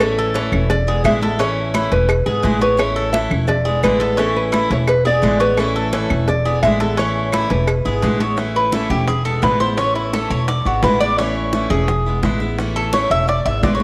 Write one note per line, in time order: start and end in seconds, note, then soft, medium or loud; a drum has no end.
0.00 0.47 A1 medium
0.00 0.33 E3 medium
0.00 0.34 A3 medium
0.00 0.34 C#4 medium
0.00 0.35 E4 medium
0.00 0.32 A4 loud
0.00 0.17 C#5 medium
0.00 cowbell loud
0.00 high conga soft
0.00 claves medium
0.18 0.52 A4 medium
0.18 high conga soft
0.34 0.69 E3 medium
0.34 0.69 A3 medium
0.34 0.69 C#4 medium
0.34 0.70 E4 medium
0.34 0.69 C#5 medium
0.34 cowbell medium
0.34 high conga loud
0.52 1.01 E1 loud
0.52 high conga soft
0.52 low conga medium
0.52 claves medium
0.70 1.05 D5 loud
0.70 muted steel-string acoustic guitar stroke medium
0.70 cowbell loud
0.70 high conga soft
0.70 low conga medium
0.87 1.04 G#3 soft
0.87 1.04 B3 soft
0.87 1.04 E4 medium
0.87 1.21 G#4 medium
0.87 high conga soft
1.04 1.86 A1 loud
1.04 1.21 B2 medium
1.04 1.21 D3 medium
1.04 1.22 G#3 medium
1.04 1.21 B3 medium
1.04 1.20 E4 medium
1.04 1.37 E5 loud
1.04 cowbell medium
1.04 high conga medium
1.04 claves medium
1.21 1.39 G#3 soft
1.21 1.39 B3 soft
1.21 1.38 E4 medium
1.21 1.39 A4 medium
1.21 cowbell medium
1.21 high conga medium
1.39 1.73 E3 medium
1.39 1.74 A3 medium
1.39 1.73 C#4 medium
1.39 1.74 C#4 medium
1.39 1.74 E4 medium
1.39 1.93 C#5 loud
1.39 cowbell loud
1.39 high conga soft
1.58 high conga soft
1.74 2.08 E3 medium
1.74 2.09 A3 medium
1.74 2.09 C#4 medium
1.74 1.91 E4 medium
1.74 2.10 E4 medium
1.74 cowbell medium
1.74 high conga medium
1.74 claves medium
1.92 2.24 E1 medium
1.92 2.61 B4 medium
1.92 cowbell medium
1.92 high conga soft
2.09 muted steel-string acoustic guitar stroke medium
2.09 cowbell loud
2.09 high conga soft
2.09 claves medium
2.26 2.43 G#1 medium
2.26 2.43 G#3 soft
2.26 2.43 B3 soft
2.26 2.43 E4 soft
2.26 2.60 G#4 medium
2.26 high conga soft
2.42 3.25 A1 medium
2.42 2.60 B2 medium
2.42 2.61 D3 medium
2.42 2.60 G#3 medium
2.42 2.59 B3 medium
2.42 2.58 E4 medium
2.42 cowbell medium
2.42 high conga medium
2.59 2.78 G#3 soft
2.59 2.78 B3 soft
2.59 2.77 E4 medium
2.59 2.80 B4 medium
2.59 2.95 C#5 medium
2.59 cowbell medium
2.59 high conga medium
2.77 3.12 E3 medium
2.77 3.12 A3 medium
2.77 3.13 C#4 medium
2.77 3.13 E4 medium
2.77 3.12 C#5 loud
2.77 cowbell loud
2.77 high conga soft
2.77 claves medium
2.96 3.30 A4 medium
2.96 high conga soft
3.13 3.47 E3 medium
3.13 3.48 A3 medium
3.13 3.48 C#4 medium
3.13 3.47 E4 medium
3.13 3.47 E5 medium
3.13 cowbell medium
3.13 high conga loud
3.31 3.79 E1 medium
3.31 high conga soft
3.31 low conga medium
3.31 claves medium
3.47 3.80 D5 medium
3.47 muted steel-string acoustic guitar stroke medium
3.47 cowbell loud
3.47 high conga soft
3.47 low conga medium
3.65 3.83 G#3 soft
3.65 3.83 B3 soft
3.65 3.82 E4 medium
3.65 3.99 G#4 medium
3.65 high conga soft
3.83 4.65 A1 medium
3.83 4.00 B2 medium
3.83 4.00 D3 medium
3.83 4.00 G#3 medium
3.83 4.00 B3 medium
3.83 3.99 E4 medium
3.83 4.19 B4 medium
3.83 cowbell medium
3.83 high conga medium
3.83 claves medium
4.00 4.17 G#3 soft
4.00 4.18 B3 medium
4.00 4.17 E4 medium
4.00 4.17 A4 medium
4.00 cowbell medium
4.00 high conga medium
4.17 4.51 E3 medium
4.17 4.52 A3 medium
4.17 4.52 C#4 medium
4.17 4.53 E4 medium
4.17 4.36 A4 medium
4.17 cowbell loud
4.36 4.72 B4 medium
4.36 high conga soft
4.52 4.87 E3 medium
4.52 4.87 A3 medium
4.52 4.88 C#4 medium
4.52 4.69 E4 medium
4.52 4.88 E4 medium
4.52 cowbell medium
4.52 high conga loud
4.52 claves medium
4.70 5.19 E1 medium
4.70 4.77 C#5 medium
4.70 cowbell medium
4.70 high conga soft
4.87 5.06 B4 loud
4.87 muted steel-string acoustic guitar stroke medium
4.87 cowbell loud
4.87 high conga soft
4.87 claves medium
5.05 5.22 G#3 soft
5.05 5.22 B3 soft
5.05 5.22 E4 medium
5.05 5.39 G#4 medium
5.05 5.39 D5 loud
5.05 high conga soft
5.22 6.04 A1 medium
5.22 5.39 B2 medium
5.22 5.39 D3 medium
5.22 5.40 G#3 medium
5.22 5.40 B3 medium
5.22 5.38 E4 medium
5.22 cowbell medium
5.22 high conga medium
5.39 5.58 G#3 soft
5.39 5.57 B3 medium
5.39 5.57 E4 medium
5.39 5.59 B4 medium
5.39 5.74 C#5 medium
5.39 cowbell medium
5.39 high conga medium
5.57 5.91 E3 medium
5.57 5.92 A3 medium
5.57 5.92 C#4 medium
5.57 5.93 E4 medium
5.57 5.94 A4 medium
5.57 cowbell loud
5.57 high conga soft
5.57 claves medium
5.76 6.09 A4 medium
5.76 high conga soft
5.92 6.27 E3 medium
5.92 6.27 A3 medium
5.92 6.27 C#4 medium
5.92 6.28 E4 medium
5.92 6.28 C#5 medium
5.92 cowbell medium
5.92 high conga medium
6.10 6.59 E1 loud
6.10 high conga soft
6.10 low conga medium
6.10 claves medium
6.28 6.62 D5 medium
6.28 muted steel-string acoustic guitar stroke medium
6.28 cowbell loud
6.28 high conga soft
6.28 low conga medium
6.45 6.63 G#3 soft
6.45 6.63 B3 soft
6.45 6.62 E4 medium
6.45 6.79 G#4 medium
6.45 high conga soft
6.63 7.44 A1 medium
6.63 6.79 B2 medium
6.63 6.80 D3 medium
6.63 6.80 G#3 medium
6.63 6.80 B3 medium
6.63 6.79 E4 medium
6.63 6.99 E5 medium
6.63 cowbell medium
6.63 high conga medium
6.63 claves medium
6.80 6.98 G#3 soft
6.80 6.97 B3 soft
6.80 6.97 E4 medium
6.80 6.97 A4 medium
6.80 cowbell medium
6.80 high conga medium
6.97 7.31 E3 medium
6.97 7.32 A3 medium
6.97 7.31 C#4 medium
6.97 7.33 C#4 medium
6.97 7.33 E4 medium
6.97 7.47 C#5 loud
6.97 cowbell loud
6.97 high conga soft
7.16 high conga soft
7.32 7.67 E3 medium
7.32 7.67 A3 medium
7.32 7.67 C#4 medium
7.32 7.50 E4 medium
7.32 7.68 E4 medium
7.32 cowbell medium
7.32 high conga loud
7.32 claves medium
7.50 7.83 E1 loud
7.50 8.17 B4 medium
7.50 cowbell medium
7.50 high conga soft
7.67 muted steel-string acoustic guitar stroke medium
7.67 cowbell loud
7.67 high conga soft
7.67 claves medium
7.85 8.02 G#1 medium
7.85 8.02 G#3 soft
7.85 8.02 B3 soft
7.85 8.02 E4 soft
7.85 8.19 G#4 medium
7.85 high conga soft
8.02 8.85 A1 medium
8.02 8.19 B2 medium
8.02 8.20 D3 medium
8.02 8.20 G#3 medium
8.02 8.20 B3 medium
8.02 8.19 E4 medium
8.02 cowbell medium
8.02 high conga medium
8.20 8.37 G#3 soft
8.20 8.38 B3 soft
8.20 8.37 E4 soft
8.20 8.37 C#5 medium
8.20 cowbell medium
8.20 high conga medium
8.37 8.71 E3 medium
8.37 8.72 A3 medium
8.37 8.72 C#4 medium
8.37 8.72 E4 medium
8.37 high bongo medium
8.55 8.73 B4 medium
8.55 high conga soft
8.72 9.07 E3 medium
8.72 9.07 A3 medium
8.72 9.08 C#4 medium
8.72 9.08 E4 medium
8.72 8.90 A4 medium
8.72 high bongo medium
8.72 high conga medium
8.90 9.39 E1 medium
8.90 9.07 G4 medium
8.90 high conga soft
8.90 low conga medium
9.07 9.25 G#4 medium
9.07 muted steel-string acoustic guitar stroke medium
9.07 high bongo medium
9.07 high conga soft
9.07 low conga medium
9.25 9.42 G#3 soft
9.25 9.42 B3 soft
9.25 9.42 E4 medium
9.25 9.42 A4 medium
9.25 high conga soft
9.42 10.25 A1 medium
9.42 9.59 B2 medium
9.42 9.59 D3 medium
9.42 9.60 G#3 medium
9.42 9.60 B3 medium
9.42 9.59 E4 medium
9.42 9.60 B4 medium
9.42 high bongo medium
9.42 low bongo medium
9.42 high conga medium
9.60 9.78 G#3 soft
9.60 9.78 B3 soft
9.60 9.77 E4 medium
9.60 9.77 C5 medium
9.60 high conga medium
9.77 10.12 E3 medium
9.77 10.12 A3 medium
9.77 10.13 C#4 medium
9.77 10.13 E4 medium
9.77 9.95 C#5 medium
9.77 high bongo medium
9.77 high conga soft
9.95 10.12 E4 medium
9.95 high bongo soft
9.95 high conga soft
10.13 10.47 E3 medium
10.13 10.48 A3 medium
10.13 10.48 C#4 medium
10.13 10.48 E4 medium
10.13 10.30 A4 medium
10.13 high bongo medium
10.13 high conga medium
10.30 10.63 E1 medium
10.30 10.47 C#5 medium
10.30 high bongo soft
10.30 high conga soft
10.48 10.65 D5 medium
10.48 muted steel-string acoustic guitar stroke medium
10.48 high bongo medium
10.48 high conga soft
10.65 10.82 G#1 medium
10.65 10.82 G#3 soft
10.65 10.83 B3 soft
10.65 10.82 E4 soft
10.65 10.83 F#4 medium
10.65 high bongo soft
10.65 high conga soft
10.82 11.64 A1 medium
10.82 10.99 B2 medium
10.82 11.00 D3 medium
10.82 11.00 G#3 medium
10.82 11.00 B3 medium
10.82 10.99 E4 medium
10.82 11.00 B4 medium
10.82 high bongo medium
10.82 low bongo medium
10.82 high conga medium
11.00 11.18 G#3 soft
11.00 11.17 B3 soft
11.00 11.17 E4 medium
11.00 11.17 D5 loud
11.00 high conga medium
11.18 11.51 E3 medium
11.18 11.52 A3 medium
11.18 11.53 C#4 medium
11.18 11.54 E4 medium
11.18 11.67 C#5 medium
11.18 high bongo medium
11.36 high conga soft
11.53 11.87 E3 medium
11.53 11.87 A3 medium
11.53 11.88 C#4 medium
11.53 11.88 E4 medium
11.53 high bongo medium
11.53 high conga loud
11.70 12.19 E1 medium
11.70 12.19 G#4 medium
11.70 high conga soft
11.70 low conga medium
11.88 muted steel-string acoustic guitar stroke medium
11.88 high bongo medium
11.88 high conga soft
11.88 low conga medium
12.05 12.23 G#3 soft
12.05 12.23 B3 soft
12.05 12.23 E4 soft
12.05 high conga soft
12.23 13.04 A1 medium
12.23 12.40 B2 medium
12.23 12.40 D3 medium
12.23 12.40 G#3 medium
12.23 12.40 B3 medium
12.23 12.40 E4 medium
12.23 high bongo medium
12.23 low bongo medium
12.23 high conga medium
12.40 12.58 G#3 soft
12.40 12.58 B3 soft
12.40 12.57 E4 medium
12.40 high conga medium
12.58 12.92 E3 medium
12.58 12.92 A3 medium
12.58 12.93 C#4 medium
12.58 12.93 E4 medium
12.58 high bongo medium
12.58 high conga soft
12.76 12.93 A4 medium
12.76 high bongo soft
12.76 high conga soft
12.93 13.27 E3 medium
12.93 13.27 A3 medium
12.93 13.28 C#4 medium
12.93 13.27 E4 medium
12.93 13.10 C#5 medium
12.93 high bongo medium
12.93 high conga loud
13.10 13.43 E1 medium
13.10 13.28 E5 loud
13.10 high bongo soft
13.10 high conga soft
13.27 13.45 D5 medium
13.27 muted steel-string acoustic guitar stroke medium
13.27 high bongo medium
13.27 high conga soft
13.45 13.62 G#1 medium
13.45 13.63 G#3 soft
13.45 13.63 B3 soft
13.45 13.62 E4 soft
13.45 13.62 E5 loud
13.45 high bongo soft
13.45 high conga soft
13.63 13.83 A1 medium
13.63 13.80 B2 medium
13.63 13.80 D3 medium
13.63 13.80 G#3 medium
13.63 13.80 B3 medium
13.63 13.79 E4 medium
13.63 13.74 D5 medium
13.63 high bongo medium
13.63 low bongo medium
13.63 high conga medium
13.75 13.83 C#5 medium
13.80 13.83 E4 medium
13.80 high conga medium